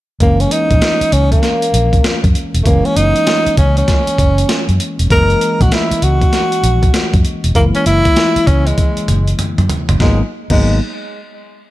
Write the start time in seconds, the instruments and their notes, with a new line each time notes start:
0.20 fingered electric bass F#1, tine electric piano E3 G#3 A#3 C#4, tenor saxophone A#3, kick, closed hi-hat
0.40 tenor saxophone C#4, closed hi-hat
0.51 tenor saxophone D#4, closed hi-hat
0.71 fingered electric bass A#1, kick, closed hi-hat
0.82 snare, closed hi-hat
1.01 muted fingered electric bass stroke, closed hi-hat
1.12 fingered electric bass C#2, tenor saxophone C#4, closed hi-hat
1.32 tenor saxophone A#3, kick, closed hi-hat
1.43 snare, closed hi-hat
1.62 closed hi-hat
1.74 fingered electric bass A#1, closed hi-hat
1.93 kick, closed hi-hat
2.04 snare, closed hi-hat
2.24 fingered electric bass F#2, kick, closed hi-hat
2.35 closed hi-hat
2.54 fingered electric bass E1, closed hi-hat
2.63 fingered electric bass F#1, tine electric piano E3 G#3 A#3, tenor saxophone A3 A#3, kick, closed hi-hat
2.68 tine electric piano C#4
2.85 tenor saxophone C#4, closed hi-hat
2.96 fingered electric bass F#1, tenor saxophone D#4, closed hi-hat
3.16 closed hi-hat
3.27 snare, closed hi-hat
3.46 muted fingered electric bass stroke, closed hi-hat
3.57 fingered electric bass C#2, tenor saxophone C#4, kick, closed hi-hat
3.77 tenor saxophone C#4, closed hi-hat
3.88 kick, snare, closed hi-hat
4.07 closed hi-hat
4.18 fingered electric bass F#1, kick, closed hi-hat
4.38 closed hi-hat
4.49 snare, closed hi-hat
4.69 fingered electric bass F#2, closed hi-hat
4.80 closed hi-hat
4.99 fingered electric bass E1, closed hi-hat
5.10 fingered electric bass F#1, tine electric piano E3 G#3 A#3 D#5, tenor saxophone A#4, kick, closed hi-hat
5.30 closed hi-hat
5.41 closed hi-hat
5.61 fingered electric bass A#1, tenor saxophone F#4, kick, closed hi-hat
5.72 tenor saxophone E4, snare, closed hi-hat
5.91 muted fingered electric bass stroke, closed hi-hat
6.02 fingered electric bass C#2, tenor saxophone F#4, closed hi-hat
6.22 kick, closed hi-hat
6.33 snare, closed hi-hat
6.52 closed hi-hat
6.63 fingered electric bass A#1, closed hi-hat
6.83 kick, closed hi-hat
6.94 snare, closed hi-hat
7.14 fingered electric bass F#2, kick, closed hi-hat
7.25 closed hi-hat
7.44 fingered electric bass E1, closed hi-hat
7.55 fingered electric bass F#1, tine electric piano E3 G#3 A#3 E4, tenor saxophone A#3, kick, closed hi-hat
7.75 tenor saxophone C#4, closed hi-hat
7.86 fingered electric bass F#1, tenor saxophone E4, closed hi-hat
8.05 kick, closed hi-hat
8.16 snare, closed hi-hat
8.36 muted fingered electric bass stroke, closed hi-hat
8.47 fingered electric bass C#2, tenor saxophone C#4, kick, closed hi-hat
8.67 tenor saxophone G#3, closed hi-hat
8.78 kick, closed hi-hat, high tom
8.97 closed hi-hat
9.08 fingered electric bass F#1, closed hi-hat, mid tom
9.28 closed hi-hat
9.39 closed hi-hat, mid tom
9.58 fingered electric bass F#2, closed hi-hat, mid tom
9.70 closed hi-hat, floor tom
9.89 fingered electric bass F#1, closed hi-hat, floor tom
10.00 fingered electric bass G#1, tine electric piano F#3 A#3 B3 D#4, tenor saxophone G#3, kick, snare
10.50 fingered electric bass G#1, tine electric piano F#3 A#3 B3 D#4, tenor saxophone G#3, kick, crash